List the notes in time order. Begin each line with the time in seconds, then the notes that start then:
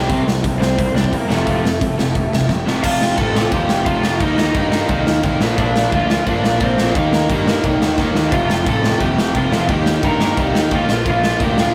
0.08 C2 C3 G3 C4, kick, open hi-hat
0.26 C2 C3 G3, snare
0.44 C2 C3 G3, kick, open hi-hat
0.59 C2 C3 G3 C4 C5, snare
0.78 C2 C3 G3, kick, open hi-hat
0.94 C2 C3 G3 D4 D5, snare
1.04 C4 C5, kick
1.13 E2 C3 G3 A#3 A#4, kick, open hi-hat
1.30 F1 F2 C3 F3 A3 A4, snare
1.46 F1 F2 C3 F3, kick, open hi-hat
1.64 F1 F2 C3, snare
1.81 F1 F2 C3, kick, open hi-hat
1.98 F1 F2 C3, snare
2.15 F1 F2 C3, kick, open hi-hat
2.33 F1 F2 C3, snare
2.41 kick
2.49 F1 F2 C3, kick, snare
2.67 F1 F2 C3 F3, snare
2.83 F1 F2 C3 F3 F4 F5, kick, crash
3.01 snare
3.16 A1 F2 C3 F3 A4 A5, kick, crash
3.35 F2 C3 F3, snare
3.51 D#2 F2 C3 F3 G4 G5, kick, crash
3.69 F1, snare
3.85 F1 F2 C3 F3 F4 F5, kick, crash
4.03 F2 C3 F3, snare
4.20 D#2 D#3 A#3 D#4 D#5, kick, crash
4.37 D#4 D#5, snare
4.54 G2 D#3 A#3 D#4, kick, crash
4.72 D#3 A#3 D#4, snare
4.89 C2 D#3 A#3 D#4, kick, crash
5.07 D#2, snare
5.23 C2 D#3 A#3 D#4, kick, crash
5.40 A#1 A#2 F3 A#3, snare
5.58 A#1 A#2 F3 A#3 D4 D5, kick, crash
5.76 snare
5.92 D2 A#2 F3 A#3 F4 F5, kick, crash
6.10 A#2 F3 A#3, snare
6.26 G1 A#2 F3 A#3 D4 D5, kick, crash
6.43 A#1, snare
6.60 A#1 A#2 F3 A#3 C4 C5, kick, crash
6.78 A#1 A#2 F3 A#3, snare
6.95 D#2 D#3 A#3 D#4 A#4, kick, crash
7.12 A#3 A#4, snare
7.30 G2 D#3 A#3 D#4, kick, crash
7.47 D#3 A#3 D#4, snare
7.64 C2 D#3 A#3 D#4, kick, crash
7.82 D#2, snare
7.98 D#2 D#3 A#3 D#4, kick, snare
8.15 D#2 D#3 A#3 D#4, snare
8.32 F1 F2 C3 F3 F4 F5, kick, crash
8.50 snare
8.66 A1 F2 C3 F3 A4 A5, kick, crash
8.84 F2 C3 F3, snare
8.99 D#2 F2 C3 F3 G4 G5, kick, crash
9.18 F1, snare
9.34 F1 F2 C3 F3 F4 F5, kick, crash
9.51 F1 F2 C3 F3, snare
9.69 D#2 D#3 A#3 D#4 G4 G5, kick, crash
9.86 snare
10.03 G2 D#3 A#3 D#4 A#4 A#5, kick, crash
10.20 D#3 A#3 D#4, snare
10.37 C2 D#3 A#3 D#4 G4 G5, kick, crash
10.55 D#2, snare
10.71 D#2 D#3 A#3 D#4, kick, crash
10.75 F4 F5
10.89 A#1 A#2 F3 A#3, snare
11.06 A#1 A#2 F3 A#3 F4 F5, kick, crash
11.24 snare
11.40 D2 A#2 F3 A#3 G4 G5, kick, crash
11.57 A#2 F3 A#3 F4, snare
11.61 F5